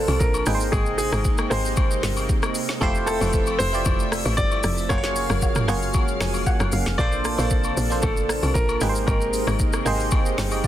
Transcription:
Already playing: C3 F3 A#3 D4 F4 A4 C5
0.08 C2, high agogo, shaker
0.20 A#1 A#4, kick, shaker
0.34 high agogo, shaker
0.46 G#1 G#3 A#3 D#4 G#4 B4 G5, cross-stick, open hi-hat, shaker
0.54 C5
0.60 shaker
0.72 G#1 G#4, kick, high agogo, shaker
0.86 shaker
0.98 G#4, open hi-hat, shaker
1.12 G#1, cross-stick, high agogo, shaker
1.24 kick, shaker
1.38 cross-stick, high agogo, shaker
1.50 G#1 A#3 D#4 G4 G#4 C5, cross-stick, open hi-hat, shaker
1.65 shaker
1.76 kick, high agogo, shaker
1.91 shaker
2.03 G1, snare, open hi-hat, shaker
2.16 high agogo, shaker
2.29 kick, shaker
2.43 cross-stick, high agogo, shaker
2.55 open hi-hat, shaker
2.69 snare, shaker
2.81 F1 F3 A3 E4 F4 G4 C5 E5, kick, high agogo, shaker
2.95 shaker
3.06 A4, cross-stick, open hi-hat, shaker
3.20 F1 A3 E4 F4 G4 B4, high agogo, shaker
3.29 C5
3.33 kick, shaker
3.46 high agogo, shaker
3.59 F1 C5, open hi-hat, shaker
3.72 A3 E4 F4 G4 D5, shaker
3.85 F1, kick, high agogo, shaker
3.99 shaker
4.12 cross-stick, open hi-hat, shaker
4.25 A1, high agogo, shaker
4.37 G1 D5, kick, shaker
4.51 high agogo, shaker
4.63 F1, cross-stick, open hi-hat, shaker
4.78 shaker
4.89 F#1 C#3 F#3 G#3 A#3 F4 F#4 G#4 C5 C#5 F5, kick, high agogo, shaker
4.98 C#5
5.03 snare, shaker
5.16 open hi-hat, shaker
5.30 F#1, cross-stick, high agogo, shaker
5.42 kick, low woodblock, shaker
5.55 cross-stick, mid tom, high agogo, shaker
5.68 F#1 A#3 F4 F#4 G#4 C#5, cross-stick, open hi-hat, shaker
5.82 shaker
5.94 kick, high agogo, shaker
6.08 shaker
6.21 F1 G#5, cross-stick, snare, open hi-hat, shaker
6.34 high agogo, shaker
6.46 F#5, kick, low woodblock, shaker
6.60 F#1, cross-stick, high agogo, shaker
6.72 F#1 F5, open hi-hat, shaker
6.86 F1, snare, shaker
6.98 A#1 C3 F3 A#3 D4 F4 A4 C5 D5, kick, high agogo, shaker
7.12 shaker
7.25 cross-stick, open hi-hat, shaker
7.38 A#1 A#3 D4 F4 A4 C5, high agogo, shaker
7.50 kick, shaker
7.64 high agogo, shaker
7.77 A#1, open hi-hat, shaker
7.90 A#3 D4 F4 A4 C5, shaker
8.02 A1 A4, kick, high agogo, shaker
8.17 shaker
8.29 cross-stick, open hi-hat, shaker
8.43 C2, high agogo, shaker
8.54 A#1 A#4, kick, shaker
8.69 high agogo, shaker
8.81 G#1 C3 G#3 A#3 D#4 G4 G#4 B4, cross-stick, open hi-hat, shaker
8.89 C5
8.95 shaker
9.07 G#1 A#4, kick, high agogo, shaker
9.21 shaker
9.33 open hi-hat, shaker
9.47 G#1, cross-stick, high agogo, shaker
9.59 kick, shaker
9.73 cross-stick, high agogo, shaker
9.85 G#1 A#3 D#4 G4 G#4 C5, cross-stick, open hi-hat, shaker
10.00 shaker
10.11 kick, high agogo, shaker
10.26 shaker
10.38 G1 A#4 G5, snare, open hi-hat, shaker
10.51 G4 D#5, high agogo, shaker
10.64 kick, shaker

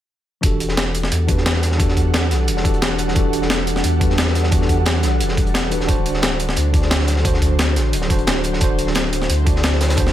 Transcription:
0.41 E1 E3 G3 D4 F#4 G4 A4 F#5, kick, closed hi-hat
0.46 A4
0.60 closed hi-hat
0.69 snare
0.77 snare, closed hi-hat
0.94 closed hi-hat
1.03 snare
1.12 E2, closed hi-hat
1.26 E3 D4 F#4 G4, kick, closed hi-hat
1.31 B4
1.38 snare
1.46 snare, closed hi-hat
1.54 snare
1.62 snare, closed hi-hat
1.72 snare
1.77 E3 D4 F#4 G4, kick, closed hi-hat
1.82 A4
1.89 snare
1.97 kick, closed hi-hat
2.14 snare, closed hi-hat
2.31 B1, snare, closed hi-hat
2.48 E1, closed hi-hat
2.57 snare
2.63 E3 D4 F#4 G4, kick, closed hi-hat
2.67 A4
2.74 closed hi-hat
2.82 snare, closed hi-hat
2.98 closed hi-hat
3.08 snare
3.14 E1 E3 D4 F#4 G4, kick, closed hi-hat
3.18 A4
3.33 closed hi-hat
3.42 snare
3.50 snare, closed hi-hat
3.67 closed hi-hat
3.76 snare
3.84 E2, closed hi-hat
3.99 E3 D4 F#4 G4, kick, closed hi-hat
4.03 B4
4.10 snare
4.18 snare, closed hi-hat
4.27 snare
4.35 snare, closed hi-hat
4.44 snare
4.50 E3 D4 F#4 G4, kick, closed hi-hat
4.54 A4
4.62 snare
4.69 kick, closed hi-hat
4.86 snare, closed hi-hat
5.03 B1, snare, closed hi-hat
5.20 E1, closed hi-hat
5.29 snare
5.37 kick, closed hi-hat
5.47 closed hi-hat
5.54 snare, closed hi-hat
5.70 D1 E3 D4 F#4 G4 B4, closed hi-hat
5.80 D1, snare
5.86 D1 D3 F#3 D4 F#4 C5, kick, closed hi-hat
5.91 C5
6.06 closed hi-hat
6.14 snare
6.22 snare, closed hi-hat
6.39 closed hi-hat
6.49 snare
6.56 D2, closed hi-hat
6.72 D3 D4 F#4, kick, closed hi-hat
6.76 D5
6.82 snare
6.91 snare, closed hi-hat
7.00 snare
7.08 snare, closed hi-hat
7.16 snare
7.23 D3 D4 F#4, kick, closed hi-hat
7.27 C5
7.34 snare
7.42 kick, closed hi-hat
7.59 snare, closed hi-hat
7.76 A1, snare, closed hi-hat
7.93 D1, closed hi-hat
8.02 snare
8.08 D3 D4 F#4, kick, closed hi-hat
8.12 C5
8.18 closed hi-hat
8.27 snare, closed hi-hat
8.44 closed hi-hat
8.53 snare
8.59 D1 D3 D4 E4 F#4, kick, closed hi-hat
8.64 C5
8.78 closed hi-hat
8.87 snare
8.95 snare, closed hi-hat
9.13 closed hi-hat
9.22 snare
9.30 D2, closed hi-hat
9.44 D3 D4 F#4, kick, closed hi-hat
9.49 D5
9.56 snare
9.63 snare, closed hi-hat
9.73 snare
9.81 snare, closed hi-hat
9.89 snare, closed hi-hat
9.95 D3 D4 F#4, kick, closed hi-hat
10.00 C5
10.07 snare

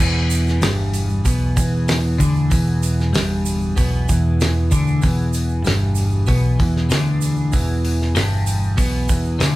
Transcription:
0.00 E1 E2 B2 E3 B3 G#4, kick, crash
0.30 open hi-hat, shaker
0.46 snare, shaker
0.62 G1 G2, snare, open hi-hat, shaker
0.94 open hi-hat, shaker
1.09 shaker
1.25 B1 B2, kick, open hi-hat, shaker
1.56 E1 E2, kick, open hi-hat, shaker
1.88 snare, open hi-hat, shaker
2.18 D2 D3, kick, open hi-hat, shaker
2.36 shaker
2.50 E1 E2, kick, open hi-hat, shaker
2.83 open hi-hat, shaker
2.99 snare, shaker
3.13 G1 G2, snare, open hi-hat, shaker
3.45 open hi-hat, shaker
3.61 shaker
3.76 B1 B2, kick, open hi-hat, shaker
4.09 E1 E2, kick, open hi-hat, shaker
4.40 snare, open hi-hat, shaker
4.71 D2 D3, kick, open hi-hat, shaker
4.87 shaker
5.02 E1 E2, kick, open hi-hat, shaker
5.33 open hi-hat, shaker
5.49 shaker
5.64 G1 G2, snare, open hi-hat, shaker
5.95 open hi-hat, shaker
6.11 shaker
6.26 B1 B2, kick, open hi-hat, shaker
6.59 E1 E2, kick, open hi-hat
6.76 snare
6.90 D2 D3, snare, open hi-hat, shaker
7.21 open hi-hat, shaker
7.37 shaker
7.52 E1 E2, kick, open hi-hat, shaker
7.85 open hi-hat
8.02 snare
8.15 G1 G2, snare, open hi-hat, shaker
8.46 open hi-hat, shaker
8.63 shaker
8.77 B1 B2, kick, open hi-hat, shaker
9.08 E1 E2, kick, open hi-hat, shaker
9.25 shaker
9.39 D2 D3, snare, open hi-hat, shaker

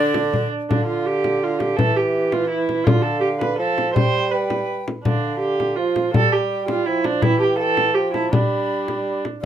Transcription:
Already playing: D3 D4 D5
0.14 frame drum
0.34 frame drum
0.69 D3 D4 F5, frame drum
0.86 F4
1.06 G4
1.24 frame drum
1.43 F4 F5
1.60 G4, frame drum
1.77 E3 A4 E5, frame drum
1.96 G4
2.32 F4, frame drum
2.50 E4 E5
2.69 frame drum
2.84 D3 F4 F5, frame drum
3.03 A4
3.21 G4
3.40 B4, frame drum
3.58 F3 A4 F5
3.78 frame drum
3.94 G3 C5 G5, frame drum
4.32 B4 G5
4.50 frame drum
4.88 frame drum
5.04 D3 D4 F5, frame drum
5.40 G4
5.60 frame drum
5.76 F3 F4 F5
5.96 frame drum
6.13 G3 A4 G5, frame drum
6.32 G4
6.68 F4, frame drum
6.86 F3 E4
7.04 D4, frame drum
7.22 E3 E4 G5, frame drum
7.39 G4 A5
7.44 G5
7.57 A4 F5
7.61 G5
7.77 frame drum
7.94 F3 G4 G5
8.13 E4 A5, frame drum
8.32 G3 D4 B5, frame drum
8.88 frame drum
9.25 frame drum
9.42 D5

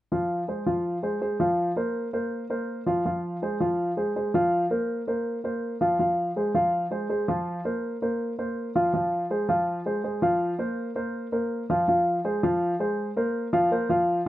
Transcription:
0.12 F3 F4 F5
0.48 G#3 G#4 C5
0.66 F3 F4 F5
1.03 G#3 G#4 C5
1.21 G#3 G#4 C5
1.40 F3 F4 F5
1.76 A#3 A#4 C5
2.13 A#3 A#4 C5
2.50 A#3 A#4 C5
2.86 F3 F4 F5
3.05 F3 F4 F5
3.42 G#3 G#4 C5
3.60 F3 F4 F5
3.97 G#3 G#4 C5
4.16 G#3 G#4 C5
4.34 F3 F4 F5
4.71 A#3 A#4 C5
5.07 A#3 A#4 C5
5.44 A#3 A#4 C5
5.81 F3 F4 F5
5.99 F3 F4 F5
6.36 G#3 G#4 C5
6.54 F3 F4 F5
6.91 G#3 G#4 C5
7.09 G#3 G#4 C5
7.28 F3 F4 F5
7.65 A#3 A#4 C5
8.02 A#3 A#4 C5
8.39 A#3 A#4 C5
8.75 F3 F4 F5
8.94 F3 F4 F5
9.30 G#3 G#4 C5
9.49 F3 F4 F5
9.86 G#3 G#4 C5
10.04 G#3 G#4 C5
10.22 F3 F4 F5
10.59 A#3 A#4 C5
10.95 A#3 A#4 C5
11.32 A#3 A#4 C5
11.70 F3 F4 F5
11.88 F3 F4 F5
12.24 G#3 G#4 C5
12.43 F3 F4 F5
12.80 G#3 G#4 C5
13.16 A#3 A#4 C5
13.53 F3 F4 F5
13.71 A#3 A#4 C5
13.89 F3 F4 F5

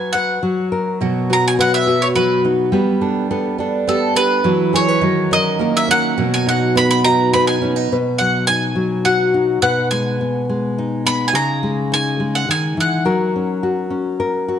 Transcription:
Already playing: F#3 B4 G#5
0.13 B4 F#5
0.43 F#3
0.72 A#4
1.01 B2 F#3
1.30 B3 F#4 A#5
1.48 G#5
1.59 F#3 B4 F#5
1.74 E5
1.87 B3 F#4
2.02 C#5
2.16 F#3 F#4 B4
2.44 B3 D#4
2.72 G3 B3
3.01 D4 A4
3.31 B3 A4
3.58 D4 A4
3.87 B3 G4 A4
4.15 D4 G4 B4
4.44 E3 F#3
4.73 C#4 G#4 C#5
4.88 B4
5.01 D#3 F#3
5.31 C#4 A#4 D#5
5.59 A#3 A#4
5.77 E5
5.88 C#4 A#4 F#5
6.18 B2 F#3
6.34 G#5
6.46 D#4 F#4 F#5
6.75 B3 B4 B5
6.91 B5
7.04 D#4 F#4 A#5
7.33 B3 B4 B5
7.47 G#5
7.62 C#4 D#4
7.76 D#4
7.92 B2 B4
8.18 F#3 F#5
8.47 D#4 G#5
8.75 F#3
9.05 F#4 F#5
9.34 D#4
9.62 B2 B4 F#5
9.91 G#3 G#5
10.21 B3
10.49 G#3
10.78 D#4
11.06 B3 B5
11.28 G#5
11.33 C#3 G#4 A#5
11.63 G#3
11.92 D#4 G#5
12.20 G#3
12.35 F#5
12.49 D#3 G#5
12.77 E3 F#5
13.05 F#3 A#4
13.36 C#4
13.63 F#4
13.90 C#4
14.20 A#4
14.48 F#4

